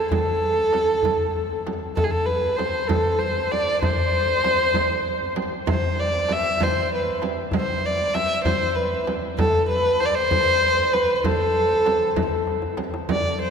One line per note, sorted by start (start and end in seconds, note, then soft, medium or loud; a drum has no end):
0.00 0.11 A4 medium
0.11 1.62 A4 medium
0.11 tombak dum medium
0.11 frame drum medium
0.43 tombak ka soft
0.73 tombak tek medium
0.73 frame drum medium
1.03 tombak dum medium
1.03 frame drum medium
1.36 tombak ka soft
1.66 tombak tek medium
1.66 frame drum medium
1.96 2.05 A4 medium
1.96 frame drum medium
1.96 tombak dum medium
2.04 2.12 G#4 medium
2.11 2.27 A4 medium
2.26 2.58 B4 medium
2.26 tombak ka soft
2.56 2.88 C5 medium
2.56 tombak tek medium
2.56 frame drum medium
2.87 3.20 A4 medium
2.87 frame drum medium
2.87 tombak dum medium
3.18 3.53 C5 medium
3.18 tombak ka soft
3.51 3.81 D5 medium
3.51 tombak tek medium
3.51 frame drum medium
3.82 5.33 C5 medium
3.82 tombak dum medium
3.82 frame drum medium
4.14 tombak ka soft
4.44 tombak tek medium
4.44 frame drum medium
4.74 tombak dum medium
4.74 frame drum medium
5.36 tombak tek medium
5.36 frame drum medium
5.67 6.01 C5 medium
5.67 frame drum loud
5.67 tombak dum medium
6.00 6.34 D5 medium
6.00 tombak ka soft
6.28 6.65 E5 medium
6.28 tombak tek medium
6.28 frame drum medium
6.60 6.93 C5 medium
6.60 frame drum medium
6.60 tombak dum medium
6.92 7.22 B4 medium
6.92 tombak ka soft
7.22 tombak tek medium
7.22 frame drum medium
7.51 tombak dum medium
7.51 frame drum medium
7.56 7.87 C5 medium
7.84 8.16 D5 medium
7.84 tombak ka soft
8.14 8.43 E5 medium
8.14 tombak tek medium
8.14 frame drum medium
8.44 8.77 C5 medium
8.44 tombak dum medium
8.44 frame drum medium
8.75 9.07 B4 medium
8.75 tombak ka soft
9.07 tombak tek medium
9.07 frame drum medium
9.38 9.67 A4 medium
9.38 tombak dum medium
9.38 frame drum medium
9.69 10.01 B4 medium
9.69 tombak ka soft
10.00 10.07 C5 loud
10.00 tombak tek medium
10.06 10.16 D5 medium
10.15 10.94 C5 loud
10.31 frame drum medium
10.31 tombak dum medium
10.62 tombak ka soft
10.93 11.15 B4 medium
10.93 tombak tek medium
10.93 frame drum medium
11.15 11.25 B4 medium
11.24 12.47 A4 medium
11.24 tombak dum medium
11.24 frame drum medium
11.56 tombak ka soft
11.86 tombak tek medium
11.86 frame drum medium
12.16 frame drum medium
12.16 tombak dum medium
12.47 tombak tek medium
12.62 tombak ka medium
12.77 tombak tek medium
12.77 frame drum medium
12.94 tombak ka medium
13.09 13.38 D5 medium
13.09 frame drum medium
13.41 13.50 C5 medium